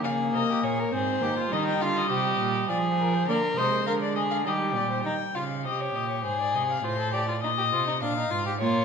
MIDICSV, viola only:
0, 0, Header, 1, 2, 480
1, 0, Start_track
1, 0, Tempo, 590551
1, 1231, Time_signature, 3, 2, 24, 8
1, 7192, End_track
2, 0, Start_track
2, 0, Title_t, "Viola"
2, 0, Program_c, 0, 41
2, 0, Note_on_c, 0, 58, 83
2, 746, Note_on_c, 0, 60, 72
2, 758, Note_off_c, 0, 58, 0
2, 986, Note_on_c, 0, 58, 72
2, 998, Note_off_c, 0, 60, 0
2, 1218, Note_off_c, 0, 58, 0
2, 1223, Note_on_c, 0, 55, 84
2, 2181, Note_on_c, 0, 53, 74
2, 2193, Note_off_c, 0, 55, 0
2, 2662, Note_off_c, 0, 53, 0
2, 2667, Note_on_c, 0, 58, 80
2, 2732, Note_off_c, 0, 58, 0
2, 2902, Note_on_c, 0, 56, 74
2, 3610, Note_off_c, 0, 56, 0
2, 3624, Note_on_c, 0, 55, 69
2, 4101, Note_off_c, 0, 55, 0
2, 6997, Note_on_c, 0, 58, 78
2, 7192, Note_off_c, 0, 58, 0
2, 7192, End_track
0, 0, End_of_file